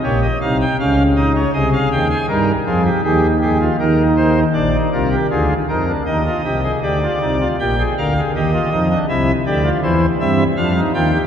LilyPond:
<<
  \new Staff \with { instrumentName = "Pipe organ" } { \time 3/4 \key ees \mixolydian \tempo 4 = 80 << { des''16 ees''16 f''16 g''16 f''8 ees''16 des''16 ees''16 f''16 g''16 aes''16 | bes'8 aes'8 g'8 aes'8 bes'8 c''8 | d''8 bes'8 aes'8 bes'8 ees''4 | d''4 g''8 f''8 ees''4 |
e''8 d''8 c''8 e''8 f''8 g''8 | } \\ { g'8 ees'8 des'8 ees'8 aes'4 | ees'8 f'16 g'16 aes'8 g'16 f'16 ees'4 | d'16 ees'16 f'16 g'16 f'8 ees'16 d'16 ees'16 f'16 g'16 aes'16 | g'16 f'16 ees'16 f'16 g'16 aes'16 bes'16 aes'16 g'16 f'16 ees'16 d'16 |
e'8 g'16 f'16 e'8 c'8 d'16 ees'16 f'16 g'16 | } >> }
  \new Staff \with { instrumentName = "Pipe organ" } { \clef bass \time 3/4 \key ees \mixolydian <bes,, bes,>8 <c, c>8 <des, des>4 <c, c>8 <ees, ees>8 | <g, g>8 <f, f>8 <ees, ees>4 <ees, ees>4 | <bes,, bes,>8 <c, c>8 <d, d>8 <f, f>8 <ees, ees>8 <c, c>8 | <d, d>8 <c, c>8 <bes,, bes,>8 <d, d>8 <ees, ees>8 <f, f>8 |
<c, c>8 <d, d>8 <e, e>8 <g, g>8 <f, f>8 <ees, ees>8 | }
>>